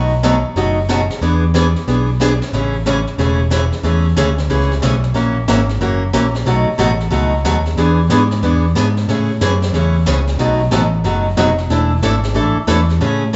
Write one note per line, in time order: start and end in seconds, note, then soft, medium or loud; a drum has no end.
0.00 0.43 B1 medium
0.00 0.12 B2 soft
0.00 0.12 F#3 medium
0.00 0.12 A3 medium
0.00 0.13 D#4 medium
0.00 0.13 F#4 medium
0.23 0.35 B2 medium
0.23 0.35 F#3 medium
0.23 0.35 A3 medium
0.23 0.35 D#4 medium
0.23 0.35 F#4 medium
0.23 snare medium
0.23 hi-hat pedal medium
0.56 1.08 F#1 medium
0.56 0.77 B2 medium
0.56 0.78 F#3 soft
0.56 0.78 A3 medium
0.56 0.78 D#4 medium
0.56 0.78 F#4 medium
0.56 brush sweep soft
0.56 snare soft
0.89 1.00 B2 medium
0.89 1.00 F#3 medium
0.89 1.01 A3 medium
0.89 1.01 D#4 medium
0.89 1.01 F#4 medium
0.89 snare medium
0.89 hi-hat pedal medium
1.10 snare soft
1.21 1.74 E2 medium
1.21 1.43 E3 medium
1.21 1.43 B3 medium
1.21 1.43 D4 medium
1.21 1.44 G#4 medium
1.21 brush sweep soft
1.21 snare soft
1.54 1.66 E3 medium
1.54 1.66 B3 medium
1.54 1.66 D4 medium
1.54 1.66 G#4 medium
1.54 snare medium
1.54 hi-hat pedal medium
1.76 snare soft
1.87 2.40 B1 medium
1.87 2.09 E3 medium
1.87 2.09 B3 medium
1.87 2.09 D4 soft
1.87 2.09 G#4 medium
1.87 brush sweep soft
1.87 snare soft
2.20 2.31 E3 medium
2.20 2.32 B3 medium
2.20 2.32 D4 medium
2.20 2.32 G#4 medium
2.20 snare medium
2.20 hi-hat pedal medium
2.42 snare soft
2.53 3.05 A1 medium
2.53 2.75 C#3 soft
2.53 2.75 E3 soft
2.53 2.75 A3 medium
2.53 2.75 C#4 medium
2.53 2.75 G#4 medium
2.53 brush sweep soft
2.53 snare soft
2.86 2.97 C#3 medium
2.86 2.97 E3 medium
2.86 2.98 A3 medium
2.86 2.98 C#4 medium
2.86 2.98 G#4 medium
2.86 snare medium
2.86 hi-hat pedal medium
3.07 snare soft
3.18 3.71 E1 medium
3.18 3.40 C#3 medium
3.18 3.40 E3 medium
3.18 3.40 A3 medium
3.18 3.40 C#4 medium
3.18 3.40 G#4 medium
3.18 brush sweep soft
3.18 snare soft
3.50 3.62 C#3 medium
3.50 3.63 E3 medium
3.50 3.63 A3 medium
3.50 3.63 C#4 medium
3.50 3.63 G#4 medium
3.50 snare medium
3.50 hi-hat pedal medium
3.72 snare soft
3.83 4.15 E2 medium
3.83 4.05 C#3 medium
3.83 4.05 E3 medium
3.83 4.06 A3 medium
3.83 4.06 C#4 medium
3.83 4.06 G#4 medium
3.83 brush sweep soft
3.83 snare soft
4.16 4.48 D2 loud
4.16 4.28 C#3 medium
4.16 4.28 E3 medium
4.16 4.28 A3 medium
4.16 4.29 C#4 medium
4.16 4.29 G#4 medium
4.16 snare medium
4.16 hi-hat pedal medium
4.38 snare soft
4.49 4.81 C#2 medium
4.49 4.71 C#3 soft
4.49 4.71 E3 medium
4.49 4.71 A3 medium
4.49 4.72 C#4 medium
4.49 4.72 G#4 medium
4.49 brush sweep soft
4.49 snare soft
4.61 snare soft
4.71 snare soft
4.82 5.14 B1 medium
4.82 4.94 C#3 medium
4.82 4.94 E3 medium
4.82 4.94 A3 medium
4.82 4.94 C#4 medium
4.82 4.94 G#4 medium
4.82 snare medium
4.82 hi-hat pedal medium
5.03 snare soft
5.14 5.47 A#1 medium
5.14 5.36 E3 medium
5.14 5.36 A#3 medium
5.14 5.37 C#4 medium
5.14 5.37 F#4 medium
5.14 5.37 A#4 medium
5.14 brush sweep soft
5.14 snare soft
5.48 5.79 G#1 medium
5.48 5.59 E3 medium
5.48 5.60 A#3 medium
5.48 5.60 C#4 medium
5.48 5.60 F#4 medium
5.48 5.60 A#4 medium
5.48 snare medium
5.48 hi-hat pedal medium
5.69 snare soft
5.81 6.12 F#1 medium
5.81 6.02 E3 soft
5.81 6.02 A#3 medium
5.81 6.02 C#4 medium
5.81 6.03 F#4 medium
5.81 6.03 A#4 medium
5.81 brush sweep soft
5.81 snare soft
6.13 6.45 A#1 medium
6.13 6.25 E3 medium
6.13 6.25 A#3 medium
6.13 6.25 C#4 medium
6.13 6.25 F#4 medium
6.13 6.25 A#4 medium
6.13 snare medium
6.13 hi-hat pedal medium
6.35 snare soft
6.46 6.66 B1 medium
6.46 6.67 B2 medium
6.46 6.68 F#3 medium
6.46 6.68 A3 medium
6.46 6.68 D#4 medium
6.46 6.68 F#4 medium
6.46 brush sweep soft
6.46 snare soft
6.67 muted picked electric bass stroke soft
6.78 7.11 A1 medium
6.78 6.90 B2 medium
6.78 6.90 F#3 medium
6.78 6.90 A3 medium
6.78 6.90 D#4 medium
6.78 6.91 F#4 medium
6.78 snare medium
6.78 hi-hat pedal medium
7.00 snare soft
7.10 7.43 C#2 medium
7.10 7.32 B2 medium
7.10 7.33 F#3 medium
7.10 7.33 A3 medium
7.10 7.33 D#4 medium
7.10 7.33 F#4 medium
7.10 brush sweep medium
7.10 snare soft
7.44 7.76 D#2 medium
7.44 7.56 B2 medium
7.44 7.56 F#3 medium
7.44 7.56 A3 medium
7.44 7.56 D#4 medium
7.44 7.56 F#4 medium
7.44 snare medium
7.44 hi-hat pedal medium
7.66 snare soft
7.77 8.09 E2 medium
7.77 7.99 E3 medium
7.77 7.99 B3 soft
7.77 7.99 D4 medium
7.77 7.99 G#4 medium
7.77 brush sweep soft
7.77 snare soft
8.10 8.41 G#2 medium
8.10 8.21 E3 medium
8.10 8.22 B3 medium
8.10 8.22 D4 medium
8.10 8.22 G#4 medium
8.10 snare medium
8.10 hi-hat pedal medium
8.31 snare soft
8.43 8.74 E2 medium
8.43 8.64 E3 medium
8.43 8.64 B3 medium
8.43 8.65 D4 medium
8.43 8.65 G#4 medium
8.43 brush sweep soft
8.43 snare soft
8.75 9.07 G#2 medium
8.75 8.87 E3 medium
8.75 8.87 B3 medium
8.75 8.87 D4 medium
8.75 8.87 G#4 medium
8.75 snare medium
8.75 hi-hat pedal medium
8.97 snare soft
9.08 9.40 A2 medium
9.08 9.30 C#3 medium
9.08 9.30 E3 medium
9.08 9.30 A3 soft
9.08 9.30 C#4 medium
9.08 9.30 G#4 medium
9.08 brush sweep soft
9.08 snare soft
9.41 9.72 F#2 medium
9.41 9.52 C#3 medium
9.41 9.53 E3 medium
9.41 9.53 A3 medium
9.41 9.53 C#4 medium
9.41 9.53 G#4 medium
9.41 snare medium
9.41 hi-hat pedal medium
9.62 snare soft
9.73 10.05 E2 medium
9.73 9.95 C#3 medium
9.73 9.95 E3 medium
9.73 9.96 A3 medium
9.73 9.96 C#4 medium
9.73 9.96 G#4 medium
9.73 brush sweep soft
9.73 snare soft
10.06 10.38 C#2 medium
10.06 10.18 C#3 medium
10.06 10.18 E3 medium
10.06 10.18 A3 medium
10.06 10.18 C#4 medium
10.06 10.18 G#4 medium
10.06 snare medium
10.06 hi-hat pedal medium
10.27 snare soft
10.39 10.70 B1 medium
10.39 10.60 B2 medium
10.39 10.61 F#3 medium
10.39 10.61 A3 medium
10.39 10.61 D#4 medium
10.39 10.61 F#4 medium
10.39 brush sweep soft
10.39 snare soft
10.71 11.03 A1 medium
10.71 10.83 B2 medium
10.71 10.83 F#3 medium
10.71 10.83 A3 medium
10.71 10.84 D#4 medium
10.71 10.84 F#4 medium
10.71 snare medium
10.71 hi-hat pedal medium
11.04 11.36 F#1 medium
11.04 11.26 B2 soft
11.04 11.26 F#3 medium
11.04 11.26 A3 medium
11.04 11.26 D#4 medium
11.04 11.26 F#4 medium
11.04 brush sweep soft
11.04 snare soft
11.37 11.69 F1 medium
11.37 11.49 B2 medium
11.37 11.49 F#3 medium
11.37 11.49 A3 medium
11.37 11.49 D#4 medium
11.37 11.49 F#4 medium
11.37 snare medium
11.37 hi-hat pedal medium
11.58 snare soft
11.69 12.01 E1 medium
11.69 11.91 E3 medium
11.69 11.92 A3 medium
11.69 11.92 D4 medium
11.69 11.92 E4 medium
11.69 11.92 A4 medium
11.69 brush sweep soft
11.69 snare soft
12.02 12.34 G#1 medium
12.02 12.14 E3 medium
12.02 12.14 A3 medium
12.02 12.14 D4 medium
12.02 12.15 E4 medium
12.02 12.15 A4 medium
12.02 snare medium
12.02 hi-hat pedal medium
12.23 snare soft
12.34 12.55 A1 medium
12.34 12.56 E3 medium
12.34 12.57 A3 medium
12.34 12.57 D4 medium
12.34 12.57 E4 medium
12.34 12.57 A4 medium
12.34 brush sweep soft
12.34 snare soft
12.56 muted picked electric bass stroke soft
12.67 13.00 E2 medium
12.67 12.79 E3 medium
12.67 12.79 A3 medium
12.67 12.79 D4 medium
12.67 12.80 E4 medium
12.67 12.80 A4 medium
12.67 snare medium
12.67 hi-hat pedal medium
12.90 snare soft
13.00 13.32 A2 medium
13.00 13.22 C#3 medium
13.00 13.22 E3 medium
13.00 13.22 A3 medium
13.00 13.23 C#4 medium
13.00 13.23 G#4 medium
13.00 brush sweep soft
13.00 snare soft